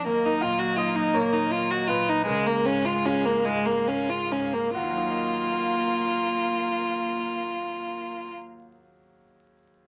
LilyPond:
<<
  \new Staff \with { instrumentName = "String section" } { \time 6/8 \key ees \minor \tempo 4. = 46 <ges ees'' bes''>2. | <aes bes' f''>2. | <bes bes' f''>2.~ | <bes bes' f''>2. | }
  \new Staff \with { instrumentName = "Grand piano" } { \time 6/8 \key ees \minor r8 f''8 ees''8 des''4 ces''8 | bes'2. | <ees, ees ges ees' ges' bes' ees''>2.~ | <ees, ees ges ees' ges' bes' ees''>2. | }
  \new Staff \with { instrumentName = "Grand piano" } { \clef bass \time 6/8 \key ees \minor ees,8 bes,8 ees'8 bes,8 bes'8 bes,8 | des,8 aes,8 f'8 aes,8 bes'8 aes,8 | r2. | r2. | }
  \new Staff \with { instrumentName = "Violin" } { \time 6/8 \key ees \minor bes16 ees'16 f'16 ges'16 f'16 ees'16 bes16 ees'16 f'16 ges'16 f'16 ees'16 | aes16 bes16 des'16 f'16 des'16 bes16 aes16 bes16 des'16 f'16 des'16 bes16 | f'2.~ | f'2. | }
  \new Staff \with { instrumentName = "Viola" } { \time 6/8 \key ees \minor bes2. | aes2~ aes8 r8 | bes2.~ | bes2. | }
>>